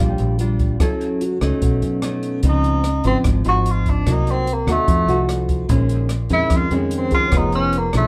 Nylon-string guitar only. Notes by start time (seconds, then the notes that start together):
Already playing: G3 D4 F4
0.00 A#2
0.39 G3 D4 F4
0.80 F#3 C#4 E4 A4
1.41 A3 C#4 D#4
1.62 B2
2.02 A3 C#4 D#4
2.43 C#3 F3 C4 D#4
3.04 F3 C4 D#4
3.25 G#2
3.45 F3 C4 D#4
4.06 C3 F#3 A#3 D#4
4.67 A3 D#4 F#4
4.87 F3
5.08 A3 D#4 F#4
5.69 A#2 D#3 G#3 C#4
6.30 D#3 G#3 C#4
6.51 F2
6.71 D#3 G#3 C#4
7.32 F3 B3 D#4 G#4
7.93 F3 G#3 D4